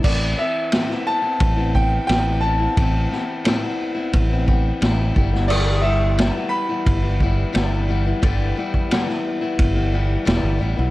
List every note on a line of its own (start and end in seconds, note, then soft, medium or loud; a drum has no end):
0.03 0.33 A1 medium
0.03 0.38 A2 medium
0.03 0.36 E3 medium
0.03 0.38 B3 medium
0.03 0.38 C4 medium
0.03 0.39 E4 medium
0.03 0.40 D5 medium
0.03 kick loud
0.03 crash loud
0.37 0.72 E3 medium
0.37 0.73 B3 medium
0.37 0.72 C4 medium
0.37 0.74 E4 medium
0.37 1.03 E5 loud
0.72 0.90 A2 medium
0.72 0.90 E3 medium
0.72 0.89 B3 medium
0.72 0.90 C4 medium
0.72 0.87 E4 medium
0.72 snare loud
0.72 ride bell medium
0.88 1.23 B3 soft
0.88 1.24 C4 soft
0.88 1.21 E4 medium
0.88 snare soft
1.07 1.71 A5 loud
1.22 1.56 B3 medium
1.22 1.57 C4 soft
1.22 1.55 E4 medium
1.40 1.98 A1 medium
1.40 kick loud
1.40 ride bell medium
1.56 1.74 B3 medium
1.56 1.73 C4 soft
1.56 1.74 E4 medium
1.73 2.07 E3 medium
1.73 2.08 B3 medium
1.73 2.08 C4 medium
1.73 2.08 E4 medium
1.73 2.06 G5 loud
1.73 kick medium
2.07 2.66 A1 loud
2.07 2.42 A2 medium
2.07 2.41 E3 medium
2.07 2.42 B3 medium
2.07 2.42 C4 medium
2.07 2.43 E4 medium
2.07 2.43 G5 loud
2.07 snare loud
2.07 ride bell medium
2.41 2.60 E3 medium
2.41 2.59 B3 medium
2.41 2.60 C4 medium
2.41 2.58 E4 medium
2.41 3.74 A5 loud
2.59 2.77 B3 soft
2.59 2.77 C4 soft
2.59 2.77 E4 medium
2.77 3.06 A1 medium
2.77 3.11 A2 medium
2.77 3.08 E3 medium
2.77 3.11 B3 medium
2.77 3.10 C4 medium
2.77 3.11 E4 medium
2.77 kick loud
2.77 ride bell medium
3.10 3.44 E3 medium
3.10 3.45 B3 medium
3.10 3.44 C4 medium
3.10 3.45 E4 medium
3.10 snare soft
3.44 3.62 A2 medium
3.44 3.63 E3 loud
3.44 3.61 B3 loud
3.44 3.62 C4 loud
3.44 3.60 E4 loud
3.44 snare loud
3.44 ride bell medium
3.61 3.95 B3 medium
3.61 3.96 C4 medium
3.61 3.93 E4 medium
3.95 4.30 B3 medium
3.95 4.31 C4 medium
3.95 4.28 E4 medium
4.13 4.71 A1 loud
4.13 kick loud
4.13 ride bell medium
4.30 4.47 B3 medium
4.30 4.46 C4 medium
4.30 4.47 E4 medium
4.46 4.80 E3 medium
4.46 4.81 B3 medium
4.46 4.81 C4 medium
4.46 4.82 E4 medium
4.46 kick medium
4.81 5.11 A1 medium
4.81 5.16 A2 medium
4.81 5.13 E3 medium
4.81 5.15 B3 medium
4.81 5.15 C4 loud
4.81 5.16 E4 loud
4.81 snare loud
4.81 ride bell medium
5.14 6.30 G1 loud
5.14 5.32 E3 medium
5.14 5.32 G3 medium
5.14 5.31 B3 medium
5.14 5.30 E4 medium
5.14 kick loud
5.31 5.49 E3 soft
5.31 5.49 G3 soft
5.31 5.50 B3 medium
5.31 5.49 E4 medium
5.31 snare soft
5.48 5.84 G2 medium
5.48 5.84 D3 medium
5.48 5.83 E3 medium
5.48 5.84 G3 medium
5.48 5.85 B3 medium
5.48 5.85 E4 medium
5.48 5.84 D5 loud
5.48 crash loud
5.82 6.17 E3 medium
5.82 6.18 G3 medium
5.82 6.53 E5 medium
5.86 6.18 B3 medium
5.86 6.18 E4 medium
6.18 6.35 G2 medium
6.18 6.35 D3 medium
6.18 6.35 E3 medium
6.18 6.34 G3 medium
6.18 6.33 B3 medium
6.18 6.32 E4 medium
6.18 snare loud
6.18 ride bell medium
6.33 6.70 E3 soft
6.33 6.69 G3 medium
6.33 6.68 B3 medium
6.33 6.68 E4 medium
6.49 10.21 B5 loud
6.69 7.03 E3 soft
6.69 7.02 G3 soft
6.69 7.02 B3 medium
6.69 7.01 E4 medium
6.86 7.43 G1 medium
6.86 kick loud
6.86 ride bell medium
7.02 7.19 E3 soft
7.02 7.21 G3 soft
7.02 7.20 B3 soft
7.02 7.20 E4 medium
7.20 7.52 E3 medium
7.20 7.52 G3 medium
7.20 7.53 B3 medium
7.20 7.53 E4 medium
7.20 kick medium
7.52 8.12 G1 loud
7.52 7.88 G2 medium
7.52 7.88 D3 medium
7.52 7.87 E3 medium
7.52 7.87 G3 medium
7.52 7.88 B3 medium
7.52 7.88 E4 medium
7.52 snare loud
7.52 ride bell medium
7.88 8.05 E3 medium
7.88 8.06 G3 medium
7.88 8.05 B3 medium
7.88 8.04 E4 medium
8.05 8.21 E3 medium
8.05 8.22 G3 soft
8.05 8.22 B3 medium
8.05 8.22 E4 medium
8.22 8.51 G1 medium
8.22 8.56 G2 loud
8.22 8.56 D3 loud
8.22 8.55 E3 medium
8.22 8.56 G3 loud
8.22 8.57 B3 loud
8.22 8.57 E4 medium
8.22 kick loud
8.22 ride bell medium
8.56 8.90 E3 medium
8.56 8.91 G3 medium
8.56 8.91 B3 medium
8.56 8.92 E4 medium
8.74 kick medium
8.91 9.08 G2 medium
8.91 9.08 D3 loud
8.91 9.08 E3 loud
8.91 9.08 G3 medium
8.91 9.08 B3 loud
8.91 9.07 E4 medium
8.91 snare loud
8.91 ride bell medium
9.08 9.43 E3 medium
9.08 9.42 G3 medium
9.08 9.41 B3 medium
9.08 9.40 E4 medium
9.08 snare soft
9.41 9.76 E3 medium
9.41 9.75 G3 medium
9.41 9.74 B3 medium
9.41 9.74 E4 medium
9.59 10.16 G1 medium
9.59 kick loud
9.59 ride bell medium
9.75 9.90 E3 medium
9.75 9.92 G3 medium
9.75 9.93 B3 medium
9.75 9.92 E4 medium
9.91 10.24 E3 medium
9.91 10.25 G3 medium
9.91 10.25 B3 medium
9.91 10.25 E4 medium
10.25 10.43 E1 medium
10.25 10.60 G2 medium
10.25 10.60 D3 medium
10.25 10.58 E3 medium
10.25 10.59 G3 loud
10.25 10.60 B3 medium
10.25 10.61 E4 medium
10.25 snare loud
10.25 ride bell medium
10.43 10.59 G1 medium
10.59 10.76 A1 medium
10.59 10.77 E3 medium
10.59 10.77 G3 medium
10.59 10.76 B3 medium
10.59 10.75 E4 medium
10.76 10.90 B1 loud
10.76 10.90 E3 soft
10.76 10.90 G3 soft
10.76 10.90 B3 medium
10.76 10.90 E4 medium